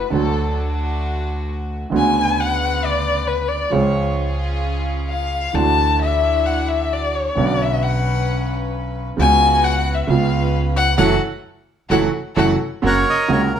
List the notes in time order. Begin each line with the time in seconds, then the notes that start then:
Already playing: B4
0.10 D2 D3 F#3 A3 D4 F#4 A4
0.14 F#4
1.91 D2 C#3 D3 B3 F#4 B4
1.97 G#5
2.40 F#5
2.84 D5
3.27 B4
3.49 D5
3.70 C#2 C#3 F3 G#3 C#4 F4 G#4 C#5
5.09 F5
5.53 D2 D3 E3 A3 D4 E4 F#4 A5
6.02 E5
6.46 F#5
6.68 E5
6.93 D5
7.15 C#5
7.35 B1 B2 D3 B3 C#4 B4 D5
7.39 F#4
7.62 E5
7.82 F#5
9.17 C#2 C#3 G#3 B3 C#4 F#4 B4 G#5
9.21 F#4
9.64 F#5
9.94 E5
10.07 C#2 C#3 G#3 B3 C#4 F4 B4 F5
10.76 F#5
10.97 F#1 E3 F#3 A3 E4 F#4 A4 F#5
11.90 F#1 E3 F#3 A3 E4 F#4 A4 F#5
12.36 F#1 E3 F#3 A3 E4 F#4 A4 F#5
12.82 F#1 F#2 C#3 F#3 A#3 C#4 F#4 A#4 C#5
12.86 A#4 F#5
13.10 D#5
13.28 C#2 C#3 F#3 A#3 C#4 F#4 A#4
13.32 C#5
13.55 A#4